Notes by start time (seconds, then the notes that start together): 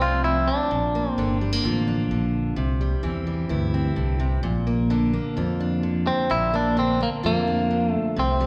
Already playing: C2 F2 C3 F3 A3
0.01 C4 F4
0.24 F3 E4
0.48 D4
0.71 A#1 A#2
0.95 A#3
1.12 C4
1.18 G1 D3 D4
1.41 G3
1.52 A#3
1.64 A1 F2 F4
1.87 D4
2.11 A#1 D3
2.56 C2 C3
2.81 G3
3.03 E2 E3 C4
3.27 G3
3.49 D2 G2 E4
3.74 C4
3.96 C2 D3
4.20 C3
4.43 A#1 A#2
4.67 A#3
4.90 D3 D4
5.13 A#3
5.37 F2 F4
5.60 D4
5.83 D3
6.07 C4
6.30 A#1 A#2 E4
6.54 A#3 D4
6.77 D3 C4 D4
7.01 A#3
7.23 F2 A#3 F4
7.47 D4
7.70 D3
7.90 A3
8.16 C2 C3 C4
8.40 G3